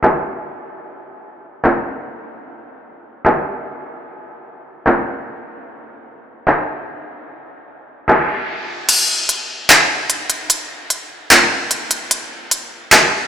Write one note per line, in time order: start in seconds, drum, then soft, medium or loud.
0.03 clap loud
1.64 clap loud
3.25 clap loud
4.86 clap loud
6.48 clap loud
8.09 clap loud
8.89 closed hi-hat medium
8.89 crash medium
9.29 closed hi-hat medium
9.69 clap loud
9.69 closed hi-hat medium
10.10 closed hi-hat medium
10.30 closed hi-hat medium
10.50 closed hi-hat medium
10.90 closed hi-hat medium
11.31 clap loud
11.31 closed hi-hat medium
11.71 closed hi-hat medium
11.91 closed hi-hat medium
12.11 closed hi-hat medium
12.51 closed hi-hat medium
12.92 clap loud
12.92 closed hi-hat medium